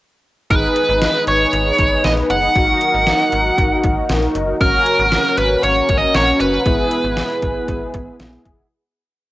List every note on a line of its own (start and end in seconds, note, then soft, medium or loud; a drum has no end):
0.50 0.68 G#1 loud
0.50 2.52 D#4 medium
0.50 2.52 G#4 medium
0.50 2.52 B4 medium
0.50 1.24 B4 medium
0.50 kick loud
0.50 closed hi-hat medium
0.76 closed hi-hat medium
0.89 1.07 G#1 medium
1.02 snare loud
1.02 closed hi-hat medium
1.27 1.45 G#1 loud
1.27 2.07 C#5 medium
1.27 closed hi-hat medium
1.53 1.71 G#1 loud
1.53 closed hi-hat medium
1.79 1.97 G#1 loud
1.79 kick medium
1.79 closed hi-hat medium
2.04 2.22 A#1 loud
2.04 2.12 D#5 loud
2.04 snare loud
2.04 closed hi-hat medium
2.30 2.48 F#1 medium
2.30 4.31 F#5 loud
2.30 closed hi-hat medium
2.56 2.74 G#1 loud
2.56 4.57 D#4 medium
2.56 4.57 F#4 medium
2.56 4.57 A#4 medium
2.56 kick loud
2.56 closed hi-hat medium
2.81 closed hi-hat medium
2.94 3.12 G#1 medium
3.07 snare loud
3.07 closed hi-hat medium
3.32 3.51 G#1 loud
3.32 closed hi-hat medium
3.58 3.76 G#1 loud
3.58 kick medium
3.58 closed hi-hat medium
3.83 4.02 G#1 loud
3.83 kick medium
3.83 closed hi-hat medium
4.09 4.27 A#1 loud
4.09 snare loud
4.09 closed hi-hat medium
4.35 4.53 F#1 medium
4.35 closed hi-hat medium
4.61 4.79 G#1 loud
4.61 6.62 C#4 medium
4.61 6.62 F#4 medium
4.61 6.62 A#4 medium
4.61 5.38 A#4 medium
4.61 kick loud
4.61 closed hi-hat medium
4.86 closed hi-hat medium
4.99 5.17 G#1 loud
5.12 snare loud
5.12 closed hi-hat medium
5.37 5.56 G#1 loud
5.37 5.63 B4 medium
5.37 closed hi-hat medium
5.63 5.81 G#1 loud
5.63 5.99 C#5 loud
5.63 closed hi-hat medium
5.89 6.07 G#1 loud
5.89 kick medium
5.89 closed hi-hat medium
5.98 6.15 D#5 loud
6.14 6.33 A#1 loud
6.14 6.40 C#5 loud
6.14 snare loud
6.14 closed hi-hat medium
6.40 6.58 F#1 medium
6.40 8.16 B4 medium
6.40 closed hi-hat medium
6.66 6.84 G#1 loud
6.66 8.67 B3 medium
6.66 8.67 E4 medium
6.66 8.67 G#4 medium
6.66 kick loud
6.66 closed hi-hat medium
6.91 closed hi-hat medium
7.04 7.22 G#1 loud
7.17 snare loud
7.17 closed hi-hat medium
7.42 7.61 G#1 loud
7.42 kick medium
7.42 closed hi-hat medium
7.68 7.86 G#1 loud
7.68 kick medium
7.68 closed hi-hat medium
7.94 8.12 G#1 loud
7.94 kick medium
7.94 closed hi-hat medium
8.20 8.38 A#1 medium
8.20 snare loud
8.20 closed hi-hat medium
8.45 8.63 F#1 medium
8.45 kick medium
8.45 closed hi-hat medium